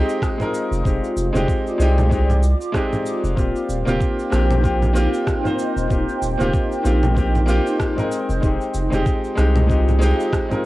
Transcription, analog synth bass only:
0.71 0.82 F1 medium
0.85 0.99 F1 medium
1.16 1.31 F1 medium
1.34 1.45 F1 medium
1.79 2.54 C2 medium
3.24 3.35 F1 medium
3.38 3.52 D#1 medium
3.69 3.83 D#1 medium
3.87 3.98 D#1 medium
4.32 5.07 A#1 medium
5.76 5.87 D#1 loud
5.90 6.04 D#1 medium
6.22 6.36 D#1 medium
6.40 6.50 D#1 medium
6.85 7.60 A#1 medium
8.29 8.40 F1 loud
8.43 8.57 F1 loud
8.75 8.89 F1 medium
8.92 9.03 F1 medium
9.38 10.13 C2 medium

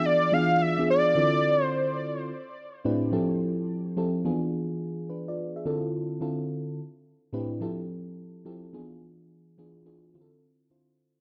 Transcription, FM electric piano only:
0.00 0.24 E3 medium
0.00 0.25 B3 medium
0.00 0.25 D4 medium
0.00 0.25 F4 medium
0.00 0.25 G#4 medium
0.32 0.64 E3 medium
0.32 0.65 B3 medium
0.32 0.65 D4 medium
0.32 0.65 F4 medium
0.32 0.65 G#4 medium
0.78 1.16 E3 medium
0.78 1.16 B3 medium
0.78 1.16 D4 medium
0.78 1.15 F4 medium
0.78 1.17 G#4 medium
1.15 2.07 D3 medium
1.15 2.07 C4 medium
1.15 2.07 E4 medium
1.15 2.08 F4 medium
1.15 2.08 A4 medium
2.85 3.08 A2 loud
2.85 3.08 C4 medium
2.85 3.08 D4 medium
2.85 3.08 E4 medium
2.85 3.08 G4 medium
2.85 3.08 B4 loud
3.12 3.83 F3 loud
3.12 3.83 C4 medium
3.12 3.83 E4 medium
3.12 3.83 G4 loud
3.12 3.83 A4 loud
3.96 4.24 F3 medium
3.96 4.25 C4 medium
3.96 4.25 E4 medium
3.96 4.25 G4 medium
3.96 4.25 A4 loud
4.25 4.95 E3 medium
4.25 4.96 B3 medium
4.25 4.96 D4 medium
4.25 4.96 F4 medium
4.25 4.96 G#4 loud
5.10 5.27 D4 medium
5.10 5.27 B4 medium
5.28 5.54 F4 medium
5.28 5.54 D5 medium
5.56 5.83 G#4 medium
5.56 5.82 E5 medium
5.65 6.11 D3 loud
5.65 6.12 C4 medium
5.65 6.12 E4 medium
5.65 6.12 F4 medium
5.65 6.12 A4 loud
6.21 6.77 D3 loud
6.21 6.77 C4 medium
6.21 6.77 E4 medium
6.21 6.77 F4 medium
6.21 6.77 A4 loud
7.33 7.56 A2 loud
7.33 7.56 C4 medium
7.33 7.56 D4 medium
7.33 7.56 E4 medium
7.33 7.56 G4 medium
7.33 7.57 B4 loud
7.61 8.32 F3 loud
7.61 8.32 C4 medium
7.61 8.32 E4 medium
7.61 8.32 G4 medium
7.61 8.32 A4 loud
8.45 8.73 F3 medium
8.45 8.73 C4 medium
8.45 8.73 E4 medium
8.45 8.73 G4 medium
8.45 8.74 A4 loud
8.73 9.44 E3 medium
8.73 9.44 B3 medium
8.73 9.44 D4 medium
8.73 9.44 F4 medium
8.73 9.45 G#4 loud
9.58 9.81 E3 loud
9.58 9.81 B3 medium
9.58 9.81 D4 loud
9.58 9.81 F4 medium
9.58 9.81 G#4 loud
9.85 10.08 E3 loud
9.85 10.09 B3 medium
9.85 10.09 D4 medium
9.85 10.09 F4 medium
9.85 10.09 G#4 loud
10.14 10.60 D3 loud
10.14 10.60 C4 medium
10.14 10.60 E4 medium
10.14 10.60 F4 medium
10.14 10.23 G4 medium
10.21 10.64 A4 loud
10.70 11.21 D3 medium
10.70 11.21 C4 medium
10.70 11.21 E4 medium
10.70 11.21 F4 medium
10.70 11.21 C5 medium

